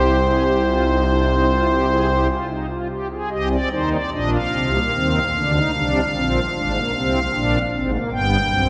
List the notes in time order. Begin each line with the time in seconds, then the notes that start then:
Already playing: C2 C3 G4 C5
0.26 G#4
0.46 G4
0.66 F4
0.86 D#4
1.08 D4
1.28 D#4
1.49 F4
1.69 G4
1.89 G#4
2.09 G4
2.28 F4
2.48 D#4
2.69 F4
2.89 G4
3.11 G#4
3.30 C2 C3 G4 D#5
3.51 C4 D5
3.71 D#2 D#3 D#4 C5
3.92 D5
4.11 A#1 A#2 D4 D#5
4.32 F5
4.53 C2 C3 C4
4.74 A#3
4.94 D#2 D#3 C4
5.34 D2 D3 D4
5.54 D#4
5.75 C2 C3 D4
6.14 A#1 A#2 C4
6.55 G#1 G#2 D4
6.74 A#3
6.95 C2 C3 C4
7.32 A#1 A#2 D4
7.73 G#1 G#2 C4
7.92 A#3
8.11 G1 G2 B3 G5
8.53 B1 B2 C4